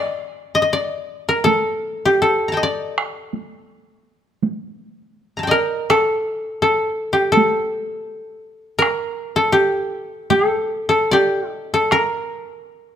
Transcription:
Already playing: koto A#4 D5
0.55 koto D#5
0.62 koto D#5
0.73 koto D5
1.29 koto A#4
1.44 koto A4, taiko high
2.06 koto G4
2.22 koto A4
2.48 koto A5 A#5
2.53 koto D#5 G5
2.63 koto D5
2.98 taiko rim
3.33 taiko high
4.43 taiko high
5.37 koto A5 A#5
5.43 koto G5
5.47 koto A#4 D5 D#5
5.90 koto A4, taiko rim
6.62 koto A4
7.13 koto G4
7.32 koto A4
7.37 taiko high
8.79 koto A#4, taiko rim
9.36 koto A4
9.52 koto G4
10.30 koto A4, taiko high
10.89 koto A4
11.11 koto G4 D5
11.51 koto D#4
11.74 koto A4
11.91 koto A#4, taiko rim

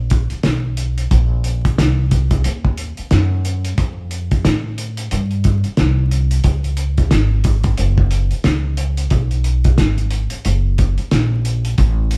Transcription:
Already playing: upright bass A#1
0.10 kick, closed hi-hat
0.30 muted upright bass stroke, closed hi-hat
0.43 upright bass B1, snare, closed hi-hat
0.77 closed hi-hat
0.98 closed hi-hat
1.11 upright bass A#1, kick, closed hi-hat
1.44 closed hi-hat
1.65 kick, closed hi-hat
1.78 upright bass C2, snare, closed hi-hat
2.11 kick, closed hi-hat
2.31 kick, closed hi-hat
2.44 upright bass D#2, closed hi-hat
2.65 kick
2.77 closed hi-hat
2.97 muted upright bass stroke, closed hi-hat
3.11 upright bass F#2, snare, closed hi-hat
3.45 closed hi-hat
3.65 closed hi-hat
3.78 upright bass F2, kick, closed hi-hat
4.11 closed hi-hat
4.31 kick, closed hi-hat
4.45 upright bass A2, snare, closed hi-hat
4.78 closed hi-hat
4.97 closed hi-hat
5.11 upright bass G2, closed hi-hat
5.31 closed hi-hat
5.44 kick, closed hi-hat
5.64 muted upright bass stroke, closed hi-hat
5.77 upright bass C2, snare, closed hi-hat
6.11 closed hi-hat
6.31 closed hi-hat
6.44 upright bass C#2, kick, closed hi-hat
6.64 closed hi-hat
6.77 closed hi-hat
6.97 kick, closed hi-hat
7.11 upright bass G#1, snare, closed hi-hat
7.44 kick, closed hi-hat
7.64 kick, closed hi-hat
7.78 upright bass F#1, closed hi-hat
7.98 kick
8.11 closed hi-hat
8.31 muted upright bass stroke, closed hi-hat
8.44 upright bass C#2, snare, closed hi-hat
8.77 closed hi-hat
8.97 closed hi-hat
9.10 upright bass B1, kick, closed hi-hat
9.31 closed hi-hat
9.44 closed hi-hat
9.64 kick, closed hi-hat
9.78 upright bass G#1, snare, closed hi-hat
9.98 closed hi-hat
10.10 closed hi-hat
10.30 muted upright bass stroke, closed hi-hat
10.45 upright bass F#1, closed hi-hat
10.78 kick, closed hi-hat
10.98 muted upright bass stroke, closed hi-hat
11.11 upright bass A#1, snare, closed hi-hat
11.45 closed hi-hat
11.65 closed hi-hat
11.78 upright bass A1, kick, closed hi-hat
12.11 closed hi-hat

